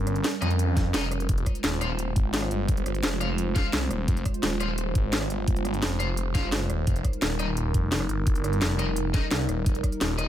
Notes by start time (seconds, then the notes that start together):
Already playing: G1 G3 C#4 A#4
0.07 cross-stick, closed hi-hat
0.16 closed hi-hat
0.24 snare, closed hi-hat
0.41 F2 D#4 A#4 D#5, cross-stick, closed hi-hat
0.50 closed hi-hat
0.59 closed hi-hat
0.77 kick, snare, closed hi-hat
0.94 F1 D#4 A#4 D#5, snare, closed hi-hat
1.12 cross-stick, closed hi-hat
1.20 closed hi-hat
1.29 F1 G#3 F4 C5, kick, closed hi-hat
1.38 closed hi-hat
1.46 kick, cross-stick, closed hi-hat
1.55 closed hi-hat
1.64 D#1, snare, closed hi-hat
1.81 F4 C5 F5, cross-stick, closed hi-hat
1.99 closed hi-hat
2.16 G#1, kick, closed hi-hat
2.34 snare, closed hi-hat
2.42 cross-stick
2.51 G1, closed hi-hat
2.69 kick, closed hi-hat
2.77 closed hi-hat
2.86 cross-stick, closed hi-hat
2.95 closed hi-hat
3.03 F1, snare, closed hi-hat
3.21 F4 C5 F5, cross-stick, closed hi-hat
3.38 closed hi-hat
3.55 F4 C5 F5, kick, snare, closed hi-hat
3.73 C2, snare, closed hi-hat
3.91 D#1, cross-stick, closed hi-hat
4.08 F1, kick, closed hi-hat
4.17 closed hi-hat
4.25 kick, cross-stick, closed hi-hat
4.34 closed hi-hat
4.43 D#1, snare, closed hi-hat
4.60 F4 C5 F5, cross-stick, closed hi-hat
4.78 closed hi-hat
4.95 G#1, kick, closed hi-hat
5.13 snare, closed hi-hat
5.21 cross-stick
5.30 G1, closed hi-hat
5.48 kick, closed hi-hat
5.56 closed hi-hat
5.65 cross-stick, closed hi-hat
5.74 closed hi-hat
5.82 F1, snare, closed hi-hat
6.00 F4 C5 F5, cross-stick, closed hi-hat
6.17 closed hi-hat
6.34 G1 F4 C5 F5, kick, snare, closed hi-hat
6.52 snare, closed hi-hat
6.70 D#1, cross-stick, closed hi-hat
6.87 F1 G3 D#4 A#4, kick, closed hi-hat
6.96 closed hi-hat
7.05 kick, cross-stick, closed hi-hat
7.13 closed hi-hat
7.22 D#1, snare, closed hi-hat
7.39 D#4 A#4 D#5, cross-stick, closed hi-hat
7.57 closed hi-hat
7.74 F1, kick, closed hi-hat
7.92 snare, closed hi-hat
8.01 cross-stick
8.09 G1, closed hi-hat
8.27 kick, closed hi-hat
8.35 closed hi-hat
8.44 cross-stick, closed hi-hat
8.53 closed hi-hat
8.62 F1, snare, closed hi-hat
8.79 D#4 A#4 D#5, cross-stick, closed hi-hat
8.96 closed hi-hat
9.14 D#4 A#4 D#5, kick, snare, closed hi-hat
9.31 C2, snare, closed hi-hat
9.49 D#1, cross-stick, closed hi-hat
9.66 F1, kick, closed hi-hat
9.75 closed hi-hat
9.84 kick, cross-stick, closed hi-hat
9.92 closed hi-hat
10.01 D#1, snare, closed hi-hat
10.18 D#4 A#4 D#5, cross-stick, closed hi-hat